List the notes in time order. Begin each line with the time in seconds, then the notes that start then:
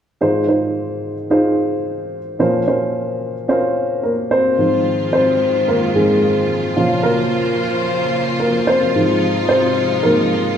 0.21 G#2 D#3 D#4 F4 G#4 C5
0.48 D#4 F4 G#4 C5
1.30 D#4 F4 G#4 C5
2.39 A#2 F3 C#4 F4 A#4 C5
2.67 C#4 F4 A#4 C5
3.48 C#4 F4 A#4 C5
4.03 A#3 A#4
4.31 C4 C5
4.58 G#2 D#3 F3 G#3 C4 F4
5.13 C4 C5
5.68 A#3 A#4
5.95 G#2 F3 G#3 C4 G#4
6.76 A#2 C#3 F3 A#3 C#4 F4 C5
7.03 A#3 A#4
8.40 A#3 A#4
8.67 C4 C5
8.94 G#2 C3 F3 G#3 C4 D#4
9.49 C4 C5
10.03 G#2 F3 A#3 C4 A#4